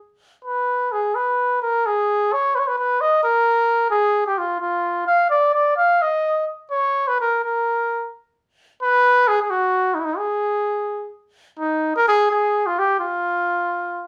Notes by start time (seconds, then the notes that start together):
0.45 B4
0.92 G#4
1.15 B4
1.62 A#4
1.86 G#4
2.33 C#5
2.55 B4
2.59 C#5
2.68 B4
2.78 B4
3.01 D#5
3.24 A#4
3.91 G#4
4.27 G4
4.38 F4
4.60 F4
5.07 F5
5.30 D5
5.54 D5
5.77 F5
6.02 D#5
6.71 C#5
7.08 B4
7.21 A#4
7.44 A#4
8.83 B4
9.28 G#4
9.43 G#4
9.50 F#4
9.95 D#4
10.00 E4
10.05 D#4
10.18 G#4
11.59 D#4
11.96 A#4
12.08 G#4
12.31 G#4
12.67 F4
12.79 G4
13.00 F4